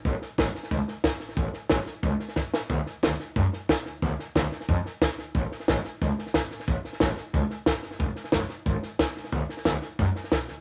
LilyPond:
<<
  \new Staff \with { instrumentName = "Upright bass" } { \clef bass \time 4/4 \key a \major \tempo 4 = 181 a,,8 r8 a,,8 r8 cis,8 r8 g,,8 a,,8 | a,,8 r8 a,,8 r8 cis,8 r8 g,,8 a,,8 | d,8 r8 d,8 r8 fis,8 r4 d,8 | d,8 r8 d,8 r8 f,8 r8 c,8 d,8 |
a,,8 r8 a,,8 r8 cis,8 r8 g,,8 a,,8 | a,,8 r8 a,,8 r8 cis,8 r8 g,,8 fis,,8 | e,,8 r8 e,,8 r8 gis,,8 r8 d,8 e,,8 | d,8 r8 d,8 r8 fis,8 r8 b,,8 d,8 | }
  \new DrumStaff \with { instrumentName = "Drums" } \drummode { \time 4/4 <bd sn>8 sn8 <hhp bd sn>8 sn16 sn16 <bd sn>8 sn8 <hhp bd sn>8 sn16 sn16 | <bd sn>8 sn8 <hhp bd sn>8 sn8 <bd sn>8 sn16 sn16 <hhp bd sn>8 sn8 | <bd sn>8 sn8 <hhp bd sn>8 sn8 <bd sn>8 sn8 <hhp bd sn>8 sn8 | <bd sn>8 sn8 <hhp bd sn>8 sn16 sn16 <bd sn>8 sn8 <hhp bd sn>8 sn8 |
<bd sn>8 sn16 sn16 <hhp bd sn>8 sn8 <bd sn>8 sn16 sn16 <hhp bd sn>8 sn16 sn16 | <bd sn>8 sn16 sn16 <hhp bd sn>8 sn8 <bd sn>8 sn8 <hhp bd sn>8 sn16 sn16 | <bd sn>8 sn16 sn16 <hhp bd sn>8 sn8 <bd sn>8 sn8 <hhp bd sn>8 sn16 sn16 | <bd sn>8 sn16 sn16 <hhp bd sn>8 sn8 <bd sn>8 sn16 sn16 <hhp bd sn>8 sn8 | }
>>